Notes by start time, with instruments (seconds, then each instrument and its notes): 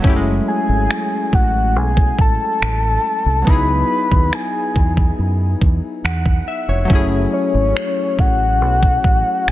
0.00 synth keys F#3 A3
0.04 fingered electric bass F#1, synth keys C#4 E4, kick
0.10 synth keys G4
0.16 synth keys G#3
0.48 soft synth lead G#5
0.69 fingered electric bass G#1
0.91 finger snap
1.33 fingered electric bass A1, soft synth lead F#5, kick
1.76 fingered electric bass B1, soft synth lead G#5
1.97 kick
2.19 fingered electric bass A1, soft synth lead A5, kick
2.62 fingered electric bass A1, finger snap
3.26 fingered electric bass C2
3.42 synth keys F#3 B3
3.47 fingered electric bass C#2, synth keys D#4 E4, soft synth lead B5, kick
3.52 synth keys G#4
4.12 fingered electric bass D#2, kick
4.33 soft synth lead G#5, finger snap
4.76 fingered electric bass E2, kick
4.97 kick
5.19 fingered electric bass F#2
5.62 fingered electric bass E2, kick
6.04 fingered electric bass E2, synth keys F#5, finger snap
6.26 kick
6.48 synth keys E5
6.68 fingered electric bass F1, synth keys C#5
6.85 synth keys F#3 A3
6.90 fingered electric bass F#1, synth keys C#4 E4, kick
6.95 synth keys G#4
7.33 soft synth lead C#5
7.54 fingered electric bass G#1
7.77 finger snap
8.19 fingered electric bass A1, soft synth lead F#5, kick
8.62 fingered electric bass B1
8.83 kick
9.04 fingered electric bass A1, kick
9.47 fingered electric bass A1, finger snap